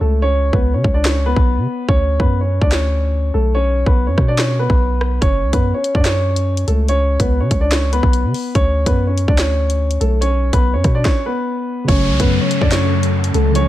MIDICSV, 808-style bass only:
0, 0, Header, 1, 2, 480
1, 0, Start_track
1, 0, Key_signature, 3, "minor"
1, 0, Tempo, 416667
1, 252, Time_signature, 4, 2, 24, 8
1, 15763, End_track
2, 0, Start_track
2, 0, Title_t, "808-style bass"
2, 0, Program_c, 0, 38
2, 11, Note_on_c, 0, 37, 104
2, 588, Note_off_c, 0, 37, 0
2, 612, Note_on_c, 0, 37, 105
2, 852, Note_on_c, 0, 49, 97
2, 869, Note_off_c, 0, 37, 0
2, 966, Note_off_c, 0, 49, 0
2, 972, Note_on_c, 0, 37, 105
2, 1548, Note_off_c, 0, 37, 0
2, 1572, Note_on_c, 0, 35, 108
2, 1811, Note_on_c, 0, 49, 97
2, 1829, Note_off_c, 0, 35, 0
2, 1926, Note_off_c, 0, 49, 0
2, 2172, Note_on_c, 0, 38, 109
2, 2517, Note_off_c, 0, 38, 0
2, 2532, Note_on_c, 0, 42, 101
2, 2992, Note_off_c, 0, 42, 0
2, 3013, Note_on_c, 0, 38, 102
2, 3819, Note_off_c, 0, 38, 0
2, 3852, Note_on_c, 0, 35, 102
2, 4428, Note_off_c, 0, 35, 0
2, 4452, Note_on_c, 0, 35, 104
2, 4692, Note_on_c, 0, 42, 96
2, 4709, Note_off_c, 0, 35, 0
2, 4806, Note_off_c, 0, 42, 0
2, 4812, Note_on_c, 0, 47, 103
2, 5388, Note_off_c, 0, 47, 0
2, 5412, Note_on_c, 0, 35, 101
2, 5988, Note_off_c, 0, 35, 0
2, 6012, Note_on_c, 0, 30, 103
2, 6252, Note_on_c, 0, 37, 101
2, 6269, Note_off_c, 0, 30, 0
2, 6366, Note_off_c, 0, 37, 0
2, 6372, Note_on_c, 0, 42, 99
2, 6602, Note_off_c, 0, 42, 0
2, 6852, Note_on_c, 0, 42, 98
2, 7658, Note_off_c, 0, 42, 0
2, 7691, Note_on_c, 0, 37, 107
2, 8267, Note_off_c, 0, 37, 0
2, 8292, Note_on_c, 0, 37, 108
2, 8531, Note_on_c, 0, 49, 94
2, 8548, Note_off_c, 0, 37, 0
2, 8645, Note_off_c, 0, 49, 0
2, 8652, Note_on_c, 0, 37, 105
2, 9228, Note_off_c, 0, 37, 0
2, 9251, Note_on_c, 0, 35, 109
2, 9491, Note_on_c, 0, 49, 101
2, 9508, Note_off_c, 0, 35, 0
2, 9605, Note_off_c, 0, 49, 0
2, 9851, Note_on_c, 0, 38, 109
2, 10197, Note_off_c, 0, 38, 0
2, 10211, Note_on_c, 0, 42, 99
2, 10672, Note_off_c, 0, 42, 0
2, 10692, Note_on_c, 0, 38, 102
2, 11498, Note_off_c, 0, 38, 0
2, 11531, Note_on_c, 0, 35, 104
2, 12107, Note_off_c, 0, 35, 0
2, 12131, Note_on_c, 0, 35, 104
2, 12371, Note_on_c, 0, 42, 100
2, 12388, Note_off_c, 0, 35, 0
2, 12485, Note_off_c, 0, 42, 0
2, 12492, Note_on_c, 0, 47, 104
2, 12722, Note_off_c, 0, 47, 0
2, 13691, Note_on_c, 0, 30, 104
2, 13931, Note_on_c, 0, 37, 101
2, 13949, Note_off_c, 0, 30, 0
2, 14046, Note_off_c, 0, 37, 0
2, 14052, Note_on_c, 0, 42, 105
2, 14282, Note_off_c, 0, 42, 0
2, 14532, Note_on_c, 0, 42, 99
2, 15338, Note_off_c, 0, 42, 0
2, 15372, Note_on_c, 0, 37, 106
2, 15763, Note_off_c, 0, 37, 0
2, 15763, End_track
0, 0, End_of_file